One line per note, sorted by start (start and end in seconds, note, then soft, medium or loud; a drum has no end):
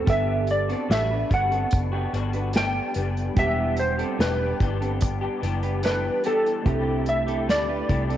0.05 0.73 G1 loud
0.05 0.68 G3 medium
0.05 3.31 B3 medium
0.05 0.69 B3 medium
0.05 0.47 B3 medium
0.05 3.32 D4 medium
0.05 0.69 D4 medium
0.05 0.46 G4 medium
0.05 3.33 G4 medium
0.05 kick medium
0.05 closed hi-hat medium
0.10 3.34 A4 medium
0.10 0.51 E5 loud
0.47 0.92 D5 medium
0.47 closed hi-hat medium
0.68 0.89 B3 soft
0.68 0.89 C4 medium
0.68 0.89 D4 soft
0.68 0.89 F#4 soft
0.68 0.89 A4 medium
0.68 closed hi-hat soft
0.89 1.23 A1 medium
0.89 1.10 G3 medium
0.89 1.10 B3 medium
0.89 1.10 D4 medium
0.89 1.08 F#4 medium
0.89 1.33 E5 medium
0.89 snare loud
0.89 closed hi-hat medium
1.10 1.30 B3 soft
1.10 1.30 D4 medium
1.10 1.31 D4 soft
1.10 1.30 F#4 soft
1.10 1.30 B4 medium
1.29 1.64 G1 medium
1.29 1.51 G3 medium
1.29 1.52 B3 medium
1.29 1.51 D4 medium
1.29 1.49 F#4 medium
1.29 kick medium
1.29 closed hi-hat medium
1.34 2.56 F#5 medium
1.50 1.93 B3 soft
1.50 1.72 C4 medium
1.50 1.92 D4 soft
1.50 1.90 F#4 soft
1.50 1.71 A4 medium
1.50 closed hi-hat soft
1.71 2.05 F#1 medium
1.71 kick medium
1.71 closed hi-hat loud
1.92 2.12 B3 medium
1.92 2.13 B3 soft
1.92 2.13 D4 soft
1.92 2.13 F#4 medium
1.92 2.12 G4 medium
2.13 2.79 G1 medium
2.13 2.34 G3 medium
2.13 2.34 B3 medium
2.13 2.33 D4 medium
2.13 2.32 F#4 medium
2.13 closed hi-hat medium
2.33 2.54 B3 soft
2.33 2.54 D4 soft
2.33 2.73 D4 soft
2.33 2.54 F#4 medium
2.33 2.73 B4 medium
2.33 closed hi-hat soft
2.53 2.94 G3 medium
2.53 2.95 B3 medium
2.53 2.95 D4 medium
2.53 3.40 G5 medium
2.53 snare loud
2.53 closed hi-hat medium
2.94 3.29 F#1 medium
2.94 3.36 G3 medium
2.94 3.36 B3 medium
2.94 3.37 D4 medium
2.94 closed hi-hat medium
3.17 closed hi-hat soft
3.35 4.02 E1 loud
3.35 3.98 E3 medium
3.35 6.61 G3 medium
3.35 3.99 B3 medium
3.35 3.76 B3 medium
3.35 6.62 D4 medium
3.35 3.99 D4 medium
3.35 3.76 G4 loud
3.35 3.96 G4 medium
3.35 6.62 F#5 medium
3.35 kick loud
3.35 closed hi-hat medium
3.39 6.63 G4 medium
3.39 3.80 E5 loud
3.77 4.20 C5 medium
3.77 closed hi-hat medium
3.98 4.18 B3 soft
3.98 4.19 C4 medium
3.98 4.19 D4 soft
3.98 4.19 G4 medium
3.98 4.18 A4 medium
3.98 closed hi-hat soft
4.18 4.52 E1 medium
4.18 4.39 E3 medium
4.18 4.40 B3 medium
4.18 4.40 D4 medium
4.18 4.38 G4 medium
4.18 5.39 B4 medium
4.18 snare loud
4.18 closed hi-hat medium
4.39 4.59 B3 soft
4.39 4.60 D4 medium
4.39 4.60 D4 soft
4.39 4.60 G4 soft
4.39 4.59 B4 medium
4.59 5.26 G1 medium
4.59 4.80 E3 medium
4.59 4.81 B3 medium
4.59 4.79 D4 medium
4.59 4.78 G4 medium
4.59 kick medium
4.59 closed hi-hat medium
4.79 5.23 B3 soft
4.79 5.01 C4 medium
4.79 5.21 D4 soft
4.79 5.20 G4 soft
4.79 5.00 A4 medium
4.79 closed hi-hat soft
5.01 kick medium
5.01 closed hi-hat loud
5.21 5.42 B3 soft
5.21 5.41 B3 soft
5.21 5.42 D4 medium
5.21 5.42 G4 medium
5.21 5.41 G4 medium
5.41 6.08 F#1 medium
5.41 5.62 E3 medium
5.41 5.63 B3 medium
5.41 5.62 D4 medium
5.41 5.60 G4 medium
5.41 closed hi-hat medium
5.62 5.82 B3 soft
5.62 5.82 D4 soft
5.62 5.83 D4 medium
5.62 5.83 G4 medium
5.62 5.82 B4 medium
5.62 closed hi-hat soft
5.83 6.22 E3 medium
5.83 6.24 B3 medium
5.83 6.24 D4 medium
5.83 6.03 D4 medium
5.83 6.25 G4 medium
5.83 6.03 A4 medium
5.83 6.26 B4 medium
5.83 snare medium
5.83 closed hi-hat medium
6.23 6.65 E3 medium
6.23 6.65 B3 medium
6.23 6.45 B3 medium
6.23 6.66 D4 medium
6.23 6.45 G4 medium
6.23 6.66 G4 medium
6.23 7.10 A4 medium
6.23 closed hi-hat medium
6.46 closed hi-hat soft
6.63 7.48 C2 medium
6.63 7.27 C3 medium
6.63 8.17 A3 medium
6.63 7.27 A3 medium
6.63 7.06 C4 medium
6.63 8.17 D4 medium
6.63 7.27 E4 medium
6.63 8.17 E4 medium
6.63 7.05 G4 loud
6.63 7.25 G4 medium
6.63 kick loud
6.63 closed hi-hat medium
6.68 8.17 G4 medium
7.06 7.46 E5 medium
7.06 closed hi-hat medium
7.26 7.47 A3 soft
7.26 7.48 C4 medium
7.26 7.48 E4 soft
7.26 7.48 G4 medium
7.26 7.47 A4 medium
7.26 closed hi-hat soft
7.47 7.81 D2 medium
7.47 7.68 C3 medium
7.47 7.69 A3 medium
7.47 7.68 E4 medium
7.47 7.66 G4 medium
7.47 8.17 D5 medium
7.47 snare loud
7.47 closed hi-hat medium
7.67 7.88 A3 soft
7.67 7.89 D4 medium
7.67 7.89 E4 soft
7.67 7.89 G4 soft
7.67 7.89 B4 medium
7.88 8.17 C2 loud
7.88 8.09 C3 medium
7.88 8.10 A3 medium
7.88 8.08 E4 medium
7.88 8.07 G4 medium
7.88 kick medium
7.88 closed hi-hat medium
8.08 8.17 A3 soft
8.08 8.17 C4 medium
8.08 8.17 E4 soft
8.08 8.17 G4 soft
8.08 8.17 A4 medium
8.08 closed hi-hat medium